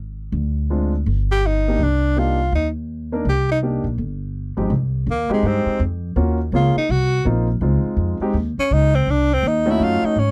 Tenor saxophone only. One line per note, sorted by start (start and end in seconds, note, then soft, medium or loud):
1.31 1.48 G4 medium
1.46 1.84 D#4 medium
1.83 2.20 D4 medium
2.19 2.54 F4 medium
2.55 2.68 D#4 medium
3.29 3.49 G4 medium
3.51 3.59 D#4 medium
5.11 5.31 A#3 medium
5.33 5.48 G#3 medium
5.47 5.82 C4 medium
6.55 6.76 F4 medium
6.77 6.92 D#4 medium
6.91 7.26 F#4 medium
8.60 8.75 C#4 medium
8.73 8.96 D#4 loud
8.95 9.12 C4 medium
9.10 9.35 D4 medium
9.33 9.49 C4 medium
9.47 9.72 D#4 medium
9.71 9.85 E4 medium
9.84 10.07 F4 medium
10.05 10.21 D#4 medium
10.19 10.31 C#4 medium